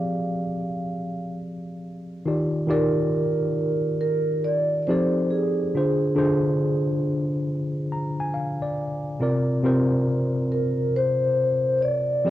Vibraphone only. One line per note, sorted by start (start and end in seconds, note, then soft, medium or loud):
0.00 1.36 F5 loud
2.71 4.00 A#4 medium
4.01 4.45 A#4 medium
4.44 4.79 D5 loud
4.83 4.87 D5 medium
4.87 5.27 C5 medium
5.30 7.00 G#4 medium
10.52 10.92 A#4 medium
10.96 11.80 C5 loud
11.78 11.83 C#5 medium
11.82 12.30 D5 medium